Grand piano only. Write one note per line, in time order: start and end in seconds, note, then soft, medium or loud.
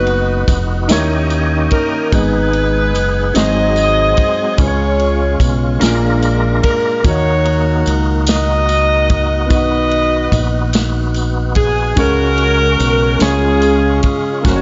0.00 0.88 B3 medium
0.00 0.86 D#4 soft
0.00 0.89 F#4 medium
0.00 0.90 B4 medium
0.00 0.94 D#5 medium
0.88 2.09 D#3 medium
0.88 2.11 D#4 medium
0.88 2.12 E4 medium
0.88 2.12 G4 medium
0.88 2.13 A#4 medium
0.92 2.14 C#5 loud
2.11 3.32 G#2 medium
2.11 3.35 B3 medium
2.11 3.34 D#4 medium
2.11 3.36 G#4 medium
2.11 3.36 B4 medium
2.11 3.36 D#5 medium
3.34 4.55 G#2 medium
3.34 4.58 C4 medium
3.34 4.58 D#4 medium
3.34 4.59 F#4 medium
3.34 4.58 G#4 medium
3.38 4.60 C5 medium
4.57 5.78 C#3 medium
4.57 5.81 G#3 medium
4.57 5.79 C#4 medium
4.57 5.80 F4 medium
4.57 5.81 G#4 medium
4.57 4.66 B4 medium
4.67 5.86 C#5 medium
5.79 7.01 A#2 medium
5.79 7.00 A#3 medium
5.79 5.87 C#4 medium
5.79 7.05 F4 medium
5.79 7.05 G#4 medium
5.84 7.07 D4 medium
5.84 7.06 A#4 medium
7.02 9.45 A#3 medium
7.02 9.47 D#4 medium
7.02 9.47 F#4 medium
7.06 8.24 D#3 medium
7.06 9.49 A#4 medium
7.06 9.49 D#5 medium
9.46 11.91 B3 medium
9.46 11.92 D#4 medium
9.46 11.93 F#4 medium
9.50 10.70 D#3 medium
9.50 11.94 B4 medium
9.50 11.95 D#5 medium
11.95 13.17 C#3 medium
11.95 13.17 G#3 medium
11.95 13.18 C#4 medium
11.95 13.21 F#4 medium
11.95 13.20 G#4 medium
11.95 13.21 C#5 medium
13.19 14.41 C#3 medium
13.19 14.44 G#3 medium
13.19 14.42 C#4 medium
13.19 14.45 F4 medium
13.19 14.45 G#4 medium
13.19 14.45 C#5 medium
14.41 14.62 A#3 medium
14.41 14.62 C#4 medium
14.41 14.62 F#4 medium
14.47 14.62 A#4 medium
14.47 14.53 C5 medium
14.56 14.62 C#5 medium